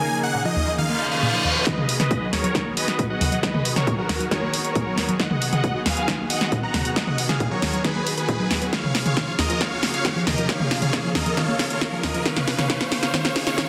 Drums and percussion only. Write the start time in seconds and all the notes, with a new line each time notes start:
1.67 kick, snare, closed hi-hat
1.78 mid tom
1.89 open hi-hat
2.00 snare, closed hi-hat, mid tom
2.11 kick, closed hi-hat
2.33 snare, open hi-hat
2.44 closed hi-hat
2.55 kick, snare, closed hi-hat
2.77 open hi-hat
2.88 snare, closed hi-hat
2.99 kick, closed hi-hat
3.21 open hi-hat, mid tom
3.32 closed hi-hat
3.43 kick, snare, closed hi-hat
3.54 mid tom
3.65 open hi-hat
3.76 snare, closed hi-hat, mid tom
3.87 kick, closed hi-hat
4.09 kick, snare, open hi-hat
4.20 closed hi-hat
4.31 kick, snare, closed hi-hat
4.54 open hi-hat
4.65 closed hi-hat
4.75 kick, closed hi-hat
4.98 snare, open hi-hat
5.09 closed hi-hat
5.20 kick, snare, closed hi-hat
5.31 mid tom
5.42 open hi-hat
5.53 closed hi-hat, mid tom
5.64 kick, closed hi-hat
5.86 snare, open hi-hat
5.97 closed hi-hat
6.08 kick, snare, closed hi-hat
6.30 open hi-hat
6.41 snare
6.52 kick, closed hi-hat
6.74 snare, open hi-hat, mid tom
6.85 closed hi-hat
6.96 kick, snare, closed hi-hat
7.07 mid tom
7.18 open hi-hat
7.29 snare, closed hi-hat, mid tom
7.40 kick, closed hi-hat
7.62 kick, snare, open hi-hat
7.73 closed hi-hat
7.84 kick, snare, closed hi-hat
8.07 open hi-hat
8.18 closed hi-hat
8.29 kick, closed hi-hat
8.51 snare, open hi-hat
8.62 closed hi-hat
8.73 kick, snare, closed hi-hat
8.84 mid tom
8.95 snare, open hi-hat
9.06 closed hi-hat, mid tom
9.17 kick, snare, closed hi-hat
9.39 snare, open hi-hat
9.50 closed hi-hat
9.61 kick, snare, closed hi-hat
9.83 snare, open hi-hat
9.94 closed hi-hat
10.05 kick, snare, closed hi-hat
10.27 snare, open hi-hat, mid tom
10.38 closed hi-hat
10.49 kick, snare, closed hi-hat
10.60 mid tom
10.71 snare, open hi-hat
10.82 closed hi-hat, mid tom
10.93 kick, snare, closed hi-hat
11.15 kick, snare, open hi-hat
11.26 closed hi-hat
11.37 kick, snare, closed hi-hat
11.59 snare, open hi-hat
11.70 closed hi-hat
11.81 kick, snare, closed hi-hat
12.03 snare, open hi-hat
12.14 closed hi-hat
12.25 kick, snare, closed hi-hat
12.37 snare, mid tom
12.48 snare, open hi-hat
12.59 snare, closed hi-hat, mid tom
12.70 kick, snare, closed hi-hat
12.81 snare
12.92 snare, open hi-hat
13.03 snare, closed hi-hat
13.14 kick, snare, closed hi-hat
13.25 snare
13.36 snare, open hi-hat
13.47 snare, closed hi-hat
13.58 kick, snare, closed hi-hat